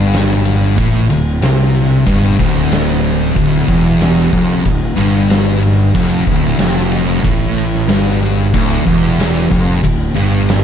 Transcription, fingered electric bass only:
0, 0, Header, 1, 2, 480
1, 0, Start_track
1, 0, Key_signature, -1, "minor"
1, 0, Tempo, 646552
1, 577, Time_signature, 4, 2, 24, 8
1, 7898, End_track
2, 0, Start_track
2, 0, Title_t, "Fingered electric bass"
2, 0, Program_c, 0, 33
2, 0, Note_on_c, 0, 31, 92
2, 545, Note_off_c, 0, 31, 0
2, 576, Note_on_c, 0, 33, 89
2, 799, Note_off_c, 0, 33, 0
2, 818, Note_on_c, 0, 26, 81
2, 1040, Note_off_c, 0, 26, 0
2, 1052, Note_on_c, 0, 36, 91
2, 1504, Note_off_c, 0, 36, 0
2, 1534, Note_on_c, 0, 31, 91
2, 1758, Note_off_c, 0, 31, 0
2, 1778, Note_on_c, 0, 26, 97
2, 2467, Note_off_c, 0, 26, 0
2, 2497, Note_on_c, 0, 26, 92
2, 2719, Note_off_c, 0, 26, 0
2, 2734, Note_on_c, 0, 28, 94
2, 3185, Note_off_c, 0, 28, 0
2, 3215, Note_on_c, 0, 29, 95
2, 3438, Note_off_c, 0, 29, 0
2, 3454, Note_on_c, 0, 26, 80
2, 3678, Note_off_c, 0, 26, 0
2, 3692, Note_on_c, 0, 31, 96
2, 4384, Note_off_c, 0, 31, 0
2, 4417, Note_on_c, 0, 29, 88
2, 4639, Note_off_c, 0, 29, 0
2, 4653, Note_on_c, 0, 26, 94
2, 4877, Note_off_c, 0, 26, 0
2, 4888, Note_on_c, 0, 29, 85
2, 5342, Note_off_c, 0, 29, 0
2, 5379, Note_on_c, 0, 33, 92
2, 5828, Note_off_c, 0, 33, 0
2, 5851, Note_on_c, 0, 31, 89
2, 6304, Note_off_c, 0, 31, 0
2, 6340, Note_on_c, 0, 26, 87
2, 6561, Note_off_c, 0, 26, 0
2, 6582, Note_on_c, 0, 28, 99
2, 7029, Note_off_c, 0, 28, 0
2, 7060, Note_on_c, 0, 29, 97
2, 7281, Note_off_c, 0, 29, 0
2, 7304, Note_on_c, 0, 26, 79
2, 7524, Note_off_c, 0, 26, 0
2, 7531, Note_on_c, 0, 31, 100
2, 7898, Note_off_c, 0, 31, 0
2, 7898, End_track
0, 0, End_of_file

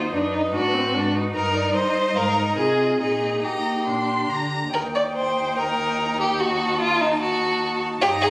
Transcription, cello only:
0, 0, Header, 1, 2, 480
1, 0, Start_track
1, 0, Key_signature, -3, "major"
1, 0, Tempo, 409556
1, 1574, Time_signature, 4, 2, 24, 8
1, 3022, Tempo, 426439
1, 6862, Tempo, 408719
1, 9575, End_track
2, 0, Start_track
2, 0, Title_t, "Cello"
2, 0, Program_c, 0, 42
2, 0, Note_on_c, 0, 39, 57
2, 137, Note_off_c, 0, 39, 0
2, 148, Note_on_c, 0, 42, 56
2, 626, Note_on_c, 0, 45, 58
2, 644, Note_off_c, 0, 42, 0
2, 1093, Note_off_c, 0, 45, 0
2, 1100, Note_on_c, 0, 44, 65
2, 1566, Note_off_c, 0, 44, 0
2, 1574, Note_on_c, 0, 43, 69
2, 2040, Note_off_c, 0, 43, 0
2, 2052, Note_on_c, 0, 55, 68
2, 2525, Note_off_c, 0, 55, 0
2, 2538, Note_on_c, 0, 44, 64
2, 3014, Note_off_c, 0, 44, 0
2, 3021, Note_on_c, 0, 48, 58
2, 3497, Note_off_c, 0, 48, 0
2, 3508, Note_on_c, 0, 46, 59
2, 3982, Note_off_c, 0, 46, 0
2, 3991, Note_on_c, 0, 58, 53
2, 4475, Note_on_c, 0, 46, 54
2, 4492, Note_off_c, 0, 58, 0
2, 4949, Note_off_c, 0, 46, 0
2, 4956, Note_on_c, 0, 50, 52
2, 5436, Note_off_c, 0, 50, 0
2, 5450, Note_on_c, 0, 39, 60
2, 9216, Note_off_c, 0, 39, 0
2, 9252, Note_on_c, 0, 43, 92
2, 9575, Note_off_c, 0, 43, 0
2, 9575, End_track
0, 0, End_of_file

